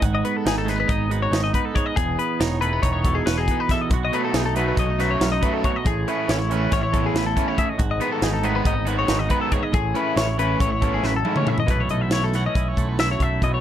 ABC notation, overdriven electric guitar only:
X:1
M:9/8
L:1/8
Q:3/8=93
K:Alyd
V:1 name="Overdriven electric guitar"
z8 z | z8 z | z [B,,F,A,D] z [B,,F,A,D] z [B,,F,A,D] z [B,,F,A,D] z | z [E,A,CE] z [E,A,CE] z [E,A,CE] z [E,A,CE] z |
z [D,G,B,D] z [D,G,B,D] z [D,G,B,D] z [D,G,B,D] z | z [E,A,CE] z [E,A,CE] z [E,A,CE] z [E,A,CE] z | z8 z |]